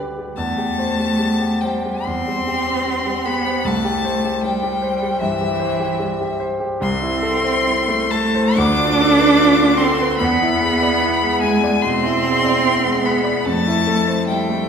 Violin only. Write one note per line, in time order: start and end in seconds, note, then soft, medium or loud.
0.36 1.62 A5 loud
1.61 2.06 G5 medium
2.05 3.27 C6 loud
3.25 3.67 B5 loud
3.65 4.43 A5 loud
4.44 5.20 G5 loud
5.21 6.40 E5 loud
6.82 8.12 C6 loud
8.11 8.59 A5 loud
8.57 9.79 D6 loud
9.77 10.17 C6 loud
10.18 11.40 B5 loud
11.41 11.83 G#5 loud
11.82 13.06 C6 loud
13.04 13.47 B5 loud
13.45 14.26 A5 loud
14.27 14.69 G5 loud